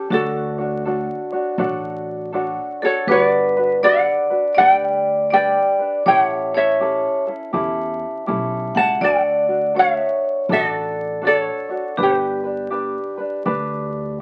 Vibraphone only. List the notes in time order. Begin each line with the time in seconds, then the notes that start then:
0.12 F#4
2.82 A4
3.08 B4
3.83 D5
4.55 D5
5.30 D5
6.06 C#5
6.54 C#5
8.75 F#5
9.01 D5
9.76 C#5
10.52 A4
11.25 A4
11.97 G4